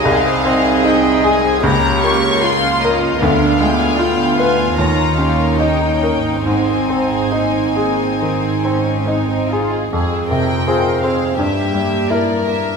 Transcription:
<<
  \new Staff \with { instrumentName = "Violin section" } { \time 4/4 \key aes \major \tempo 4 = 76 f''4 g''8 aes''8 bes''8 des'''8 c'''8 ees''8 | f''8 g''16 aes''16 g''8 aes''8 bes''8 f''8 g''4 | aes''2.~ aes''8 r8 | \key f \minor r8 g''4 f''8 e''4 d''8 e''8 | }
  \new Staff \with { instrumentName = "Viola section" } { \time 4/4 \key aes \major << { ees'2 f'2~ | f'2 ees'2~ | ees'2.~ ees'8. r16 | \key f \minor aes'4 bes'8 aes'8 g'8 g'8 bes'4 | } \\ { c'2 bes2 | b2 bes2 | c'2.~ c'8. r16 | c'2 bes2 | } >> }
  \new Staff \with { instrumentName = "Violin section" } { \time 4/4 \key aes \major << { ees''2 des''2 | f''2 des''2 | c''2.~ c''8. r16 | \key f \minor aes'8 bes'8 c''4 g'4 bes'4 | } \\ { aes16 c'16 ees'16 aes'16 ees'16 c'16 aes16 c'16 bes16 des'16 f'16 bes'16 f'16 des'16 bes16 des'16 | b16 d'16 f'16 aes'16 f'16 d'16 b16 d'16 des'16 ees'16 g'16 bes'16 g'16 ees'16 des'16 ees'16 | aes16 c'16 ees'16 aes'16 ees'16 c'16 aes16 c'16 ees'16 aes'16 ees'16 c'16 aes16 c'16 ees'16 aes'16 | r1 | } >> }
  \new Staff \with { instrumentName = "Cello section" } { \time 4/4 \key aes \major aes'2 g'4 f'4 | d'4 f'2 ees'4 | c'4 bes4 c'8 des'8 ees'8 f'8 | \key f \minor f,2 g,2 | }
  \new Staff \with { instrumentName = "Grand piano" } { \time 4/4 \key aes \major c,8 c'8 ees'8 aes'8 des,8 bes8 f'8 bes'8 | d,8 aes8 f'8 b'8 ees,8 des'8 ees'8 bes'8 | aes,8 c'8 ees'8 aes'8 ees8 c'8 ees'8 aes'8 | \key f \minor f,8 c8 <c' f' aes'>8 c'8 g,8 g8 <bes e' bes'>8 bes8 | }
  \new Staff \with { instrumentName = "Double bass section" } { \clef bass \time 4/4 \key aes \major c,2 des,2 | d,2 ees,2 | aes,,2.~ aes,,8. r16 | \key f \minor r1 | }
>>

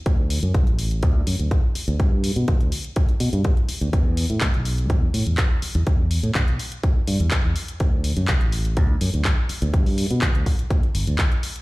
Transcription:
<<
  \new Staff \with { instrumentName = "Fingered electric bass" } { \clef bass \time 4/4 \key e \minor \tempo 4 = 124 d,8. fis,16 c,16 a,,8. d,16 r16 fis,16 d,16 r8. d,16 | g,8. b,16 d,16 d,16 r4 b,16 g,16 r8. d,16 | e,8. a,16 d,16 b,,8. e,16 r16 a,16 e,16 r8. e,16 | e,8. a,16 d,16 b,,16 r4 g,16 e,16 r16 e,16 r8 |
d,8. fis,16 c,16 a,,8. d,16 r16 fis,16 d,16 r8. d,16 | g,8. b,16 d,16 d,16 r8 d,16 r16 g,,16 d,16 r4 | }
  \new DrumStaff \with { instrumentName = "Drums" } \drummode { \time 4/4 <hh bd>8 hho16 hh16 <hh bd>16 hh16 hho16 hh16 <hh bd>8 hho16 hh16 <hh bd>8 hho16 hh16 | <hh bd>8 hho16 hh16 <hh bd>16 hh16 hho16 hh16 <hh bd>16 hh16 hho16 hh16 <hh bd>16 hh16 hho16 hh16 | <hh bd>8 hho16 hh16 <hc hh bd>16 hh16 hho16 hh16 <hh bd>8 hho16 hh16 <hc hh bd>8 hho16 hh16 | <hh bd>8 hho16 hh16 <hc hh bd>16 hh16 hho16 hh16 <hh bd>8 hho16 hh16 <hc hh bd>8 hho16 hh16 |
<hh bd>8 hho16 hh16 <hc hh bd>16 hh16 hho16 hh16 <hh bd>8 hho16 hh16 <hc hh bd>8 hho16 hh16 | <hh bd>16 hho16 hho16 hh16 <hc hh bd>16 hh16 <hho bd>16 hh16 <hh bd>16 hh16 hho16 hh16 <hc hh bd>16 hh16 hho16 hh16 | }
>>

